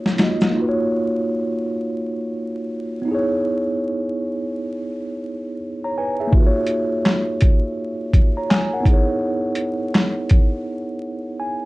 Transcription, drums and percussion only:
0.06 snare medium
0.06 shaker soft
0.18 snare medium
0.18 closed hi-hat medium
0.18 shaker soft
0.41 snare medium
0.41 shaker soft
6.33 kick loud
6.67 closed hi-hat medium
7.06 snare medium
7.06 clap medium
7.41 kick medium
7.41 closed hi-hat medium
8.13 kick medium
8.13 closed hi-hat medium
8.51 snare loud
8.51 clap medium
8.86 kick medium
8.86 closed hi-hat medium
9.55 closed hi-hat medium
9.95 snare loud
9.95 clap medium
10.29 kick medium
10.29 closed hi-hat medium

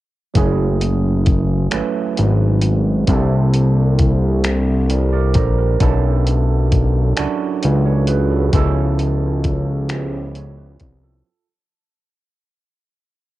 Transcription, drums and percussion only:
0.35 kick loud
0.35 closed hi-hat medium
0.81 closed hi-hat soft
1.26 kick medium
1.26 closed hi-hat soft
1.71 finger snap medium
1.71 closed hi-hat medium
2.17 closed hi-hat soft
2.62 closed hi-hat soft
3.07 kick loud
3.07 closed hi-hat medium
3.54 closed hi-hat soft
3.99 kick medium
3.99 closed hi-hat soft
4.44 finger snap medium
4.44 closed hi-hat medium
4.90 closed hi-hat soft
5.34 kick medium
5.34 closed hi-hat soft
5.80 kick loud
5.80 closed hi-hat medium
6.27 closed hi-hat soft
6.72 kick medium
6.72 closed hi-hat soft
7.17 finger snap medium
7.17 closed hi-hat medium
7.63 closed hi-hat soft
8.07 closed hi-hat soft
8.53 kick medium
8.53 closed hi-hat medium
8.99 closed hi-hat soft
9.44 kick medium
9.44 closed hi-hat soft
9.89 finger snap medium
9.89 closed hi-hat medium
10.35 closed hi-hat soft
10.80 kick medium
10.80 closed hi-hat soft

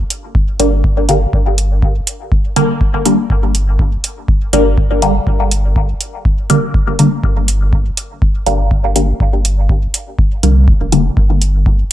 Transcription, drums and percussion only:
0.10 closed hi-hat medium
0.35 kick loud
0.60 closed hi-hat medium
0.84 kick loud
1.09 closed hi-hat medium
1.33 kick loud
1.58 closed hi-hat medium
1.82 kick loud
2.07 closed hi-hat medium
2.32 kick loud
2.56 closed hi-hat medium
2.81 kick loud
3.06 closed hi-hat medium
3.30 kick loud
3.55 closed hi-hat medium
3.79 kick loud
4.04 closed hi-hat medium
4.28 kick loud
4.53 closed hi-hat medium
4.78 kick loud
5.02 closed hi-hat medium
5.27 kick loud
5.51 closed hi-hat medium
5.76 kick loud
6.01 closed hi-hat medium
6.25 kick loud
6.50 closed hi-hat medium
6.74 kick loud
6.99 closed hi-hat medium
7.24 kick loud
7.48 closed hi-hat medium
7.73 kick loud
7.97 closed hi-hat medium
8.22 kick loud
8.46 closed hi-hat medium
8.71 kick loud
8.96 closed hi-hat medium
9.20 kick loud
9.45 closed hi-hat medium
9.69 kick loud
9.94 closed hi-hat medium
10.19 kick loud
10.43 closed hi-hat medium
10.68 kick loud
10.92 closed hi-hat medium
11.17 kick loud
11.42 closed hi-hat medium
11.66 kick loud

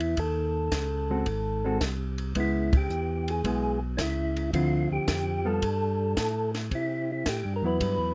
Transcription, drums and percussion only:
0.00 ride soft
0.17 kick soft
0.17 ride medium
0.72 kick soft
0.72 snare medium
0.72 hi-hat pedal soft
0.72 ride medium
1.26 kick soft
1.26 ride soft
1.81 kick soft
1.81 snare medium
1.81 hi-hat pedal soft
1.81 ride medium
2.18 ride soft
2.35 kick soft
2.35 ride medium
2.73 kick medium
2.73 ride medium
2.90 hi-hat pedal soft
3.28 ride soft
3.44 kick soft
3.44 ride medium
3.98 kick soft
3.98 snare medium
3.98 hi-hat pedal medium
3.98 ride medium
4.37 ride soft
4.53 kick soft
4.53 ride medium
5.08 kick soft
5.08 snare medium
5.08 hi-hat pedal medium
5.08 ride medium
5.62 kick soft
5.62 ride medium
6.17 kick soft
6.17 snare medium
6.17 hi-hat pedal soft
6.17 ride medium
6.55 snare soft
6.55 ride soft
6.71 kick soft
6.71 ride soft
7.26 kick soft
7.26 snare medium
7.26 hi-hat pedal medium
7.26 ride medium
7.80 kick soft
7.80 ride medium

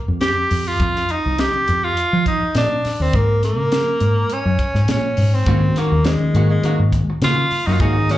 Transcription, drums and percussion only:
0.21 snare loud
0.21 closed hi-hat medium
0.51 open hi-hat medium
0.80 kick loud
0.80 closed hi-hat medium
0.96 snare soft
1.09 closed hi-hat soft
1.38 snare loud
1.38 closed hi-hat medium
1.68 closed hi-hat medium
1.97 closed hi-hat medium
2.26 kick medium
2.26 closed hi-hat medium
2.55 snare loud
2.55 closed hi-hat medium
2.85 snare soft
2.85 open hi-hat medium
3.13 kick medium
3.13 closed hi-hat medium
3.43 snare soft
3.43 closed hi-hat medium
3.72 snare loud
3.72 closed hi-hat medium
4.00 closed hi-hat medium
4.30 closed hi-hat medium
4.59 kick medium
4.59 closed hi-hat medium
4.75 snare soft
4.88 snare loud
4.88 closed hi-hat medium
5.17 open hi-hat medium
5.46 kick loud
5.46 closed hi-hat medium
5.46 muted conga soft
5.76 snare soft
5.76 closed hi-hat medium
6.05 snare loud
6.05 closed hi-hat medium
6.05 high conga medium
6.35 closed hi-hat medium
6.35 muted conga soft
6.63 closed hi-hat medium
6.63 muted conga soft
6.63 high conga medium
6.93 kick medium
6.93 closed hi-hat medium
6.93 muted conga soft
7.22 snare loud
7.22 closed hi-hat medium
7.22 high conga medium
7.51 open hi-hat medium
7.80 kick loud
7.80 closed hi-hat medium
7.80 muted conga soft
8.09 snare soft
8.09 closed hi-hat medium

